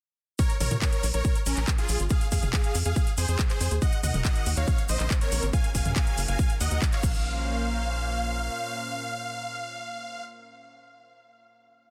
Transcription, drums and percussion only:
0.39 kick loud
0.39 closed hi-hat medium
0.39 shaker medium
0.50 closed hi-hat medium
0.50 shaker soft
0.60 open hi-hat loud
0.60 mid tom medium
0.60 shaker loud
0.71 closed hi-hat medium
0.71 mid tom medium
0.71 shaker soft
0.82 kick loud
0.82 clap loud
0.82 closed hi-hat medium
0.82 shaker medium
0.93 closed hi-hat medium
0.93 shaker soft
1.03 open hi-hat loud
1.03 shaker loud
1.13 closed hi-hat medium
1.13 shaker soft
1.25 kick loud
1.25 closed hi-hat medium
1.25 shaker medium
1.35 closed hi-hat medium
1.35 shaker soft
1.46 open hi-hat loud
1.46 shaker loud
1.57 clap soft
1.57 closed hi-hat medium
1.57 shaker soft
1.68 kick loud
1.68 clap loud
1.68 closed hi-hat medium
1.68 shaker medium
1.78 closed hi-hat medium
1.78 shaker soft
1.89 open hi-hat loud
1.89 shaker medium
2.00 closed hi-hat medium
2.00 shaker soft
2.10 kick loud
2.10 closed hi-hat medium
2.10 shaker medium
2.21 closed hi-hat medium
2.21 shaker soft
2.31 kick medium
2.31 open hi-hat loud
2.31 shaker medium
2.43 closed hi-hat medium
2.43 mid tom medium
2.43 shaker soft
2.53 kick loud
2.53 clap loud
2.53 closed hi-hat medium
2.53 shaker medium
2.63 closed hi-hat medium
2.63 shaker soft
2.75 open hi-hat loud
2.75 shaker loud
2.85 closed hi-hat medium
2.85 shaker soft
2.96 kick loud
2.96 closed hi-hat medium
2.96 shaker medium
3.07 closed hi-hat medium
3.07 shaker soft
3.17 open hi-hat loud
3.17 shaker loud
3.28 closed hi-hat medium
3.28 shaker soft
3.39 kick loud
3.39 clap loud
3.39 closed hi-hat medium
3.39 shaker medium
3.50 clap soft
3.50 closed hi-hat medium
3.50 shaker soft
3.61 open hi-hat loud
3.61 shaker loud
3.71 closed hi-hat medium
3.71 shaker soft
3.82 kick loud
3.82 closed hi-hat medium
3.82 shaker medium
3.92 closed hi-hat medium
3.92 shaker soft
4.03 open hi-hat loud
4.03 mid tom medium
4.03 shaker loud
4.14 closed hi-hat medium
4.14 mid tom medium
4.14 shaker soft
4.25 kick loud
4.25 clap loud
4.25 closed hi-hat medium
4.25 shaker medium
4.35 closed hi-hat medium
4.35 shaker soft
4.46 open hi-hat loud
4.46 shaker loud
4.56 closed hi-hat medium
4.56 shaker soft
4.67 kick loud
4.67 closed hi-hat medium
4.67 shaker medium
4.78 closed hi-hat medium
4.78 shaker soft
4.89 open hi-hat loud
4.89 shaker loud
5.00 clap soft
5.00 closed hi-hat medium
5.00 shaker soft
5.10 kick loud
5.10 clap loud
5.10 closed hi-hat medium
5.10 shaker medium
5.21 closed hi-hat medium
5.21 shaker soft
5.32 open hi-hat loud
5.32 shaker medium
5.43 closed hi-hat medium
5.43 shaker soft
5.53 kick loud
5.53 closed hi-hat medium
5.53 shaker medium
5.64 closed hi-hat medium
5.64 shaker soft
5.75 kick medium
5.75 open hi-hat loud
5.75 shaker medium
5.85 closed hi-hat medium
5.85 mid tom medium
5.85 shaker soft
5.96 kick loud
5.96 clap loud
5.96 closed hi-hat medium
5.96 shaker medium
6.07 closed hi-hat medium
6.07 shaker soft
6.18 open hi-hat loud
6.18 shaker medium
6.28 closed hi-hat medium
6.28 shaker soft
6.39 kick loud
6.39 closed hi-hat medium
6.39 shaker medium
6.50 closed hi-hat medium
6.50 shaker soft
6.61 open hi-hat loud
6.61 shaker loud
6.71 closed hi-hat medium
6.71 shaker soft
6.82 kick loud
6.82 clap loud
6.82 closed hi-hat medium
6.82 shaker medium
6.92 clap soft
6.92 closed hi-hat medium
6.92 shaker soft
7.03 kick loud
7.03 crash medium
7.03 shaker medium
7.14 shaker soft

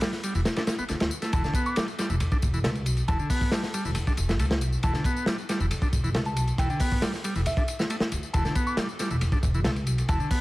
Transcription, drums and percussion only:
0.01 snare loud
0.01 ride medium
0.01 tambourine soft
0.13 snare soft
0.13 tambourine soft
0.23 ride medium
0.23 tambourine medium
0.35 tambourine soft
0.45 snare loud
0.45 ride medium
0.45 tambourine soft
0.56 snare loud
0.56 ride medium
0.56 tambourine soft
0.67 snare loud
0.67 ride medium
0.67 tambourine medium
0.79 tambourine soft
0.88 snare soft
0.88 ride medium
0.88 tambourine soft
1.00 snare medium
1.00 ride medium
1.00 tambourine soft
1.11 tambourine medium
1.22 snare soft
1.22 ride medium
1.22 tambourine soft
1.33 kick loud
1.33 ride medium
1.33 tambourine soft
1.44 snare soft
1.44 tambourine soft
1.54 kick medium
1.54 ride medium
1.54 tambourine medium
1.66 tambourine soft
1.76 snare loud
1.76 ride medium
1.76 tambourine soft
1.88 tambourine soft
1.99 snare soft
1.99 ride medium
1.99 tambourine medium
2.10 tambourine soft
2.20 ride medium
2.20 tambourine soft
2.32 kick loud
2.32 tambourine soft
2.42 kick loud
2.42 ride medium
2.42 tambourine medium
2.54 tambourine soft
2.64 snare loud
2.64 ride medium
2.64 tambourine soft
2.75 ride soft
2.75 tambourine soft
2.86 ride medium
2.86 tambourine medium
2.97 ride soft
2.97 tambourine soft
3.08 kick loud
3.08 ride medium
3.08 tambourine soft
3.19 tambourine soft
3.30 kick medium
3.30 open hi-hat medium
3.30 tambourine medium
3.41 kick loud
3.41 tambourine soft
3.52 snare loud
3.52 ride medium
3.52 tambourine soft
3.63 snare medium
3.63 tambourine soft
3.74 ride medium
3.74 tambourine medium
3.85 tambourine soft
3.95 ride medium
3.95 tambourine soft
4.07 kick medium
4.07 tambourine soft
4.17 ride medium
4.17 tambourine medium
4.29 snare medium
4.29 tambourine soft
4.39 ride medium
4.39 tambourine soft
4.51 snare loud
4.51 tambourine soft
4.61 ride medium
4.61 tambourine medium
4.73 tambourine soft
4.83 kick loud
4.83 ride medium
4.83 tambourine soft
4.93 snare soft
4.93 tambourine soft
5.04 kick medium
5.04 ride medium
5.04 tambourine medium
5.17 tambourine soft
5.26 snare loud
5.26 ride medium
5.26 tambourine soft
5.38 tambourine soft
5.49 snare soft
5.49 ride medium
5.49 tambourine medium
5.60 tambourine soft
5.71 ride medium
5.71 tambourine soft
5.82 kick medium
5.82 tambourine soft
5.93 kick medium
5.93 ride medium
5.93 tambourine medium
6.04 tambourine soft
6.14 snare loud
6.14 ride medium
6.14 tambourine soft
6.25 ride soft
6.25 tambourine soft
6.36 ride medium
6.36 tambourine medium
6.47 ride soft
6.47 tambourine soft
6.58 kick loud
6.58 ride medium
6.58 tambourine soft
6.70 tambourine soft
6.80 kick loud
6.80 open hi-hat medium
6.80 tambourine medium
6.92 kick loud
6.92 tambourine soft
7.02 snare loud
7.02 ride medium
7.02 tambourine soft
7.14 snare soft
7.14 tambourine soft
7.24 ride medium
7.24 tambourine medium
7.35 tambourine soft
7.46 ride medium
7.46 tambourine soft
7.57 kick loud
7.57 tambourine soft
7.68 ride medium
7.68 tambourine medium
7.79 snare medium
7.79 tambourine soft
7.90 ride medium
7.90 tambourine soft
8.00 snare loud
8.00 tambourine soft
8.12 ride medium
8.12 tambourine medium
8.23 tambourine soft
8.34 kick loud
8.34 ride medium
8.34 tambourine soft
8.45 snare soft
8.45 tambourine soft
8.55 kick medium
8.55 ride medium
8.55 tambourine medium
8.67 tambourine soft
8.77 snare loud
8.77 ride medium
8.77 tambourine soft
8.89 tambourine soft
8.99 snare soft
8.99 ride medium
8.99 tambourine medium
9.10 tambourine soft
9.21 ride medium
9.21 tambourine soft
9.32 kick loud
9.32 tambourine soft
9.43 kick loud
9.43 ride medium
9.43 tambourine medium
9.54 tambourine soft
9.64 snare loud
9.64 ride medium
9.64 tambourine soft
9.76 ride soft
9.76 tambourine soft
9.87 ride medium
9.87 tambourine medium
9.98 ride soft
9.98 tambourine soft
10.09 kick loud
10.09 ride medium
10.09 tambourine soft
10.20 tambourine soft
10.31 kick loud
10.31 open hi-hat medium
10.31 tambourine medium

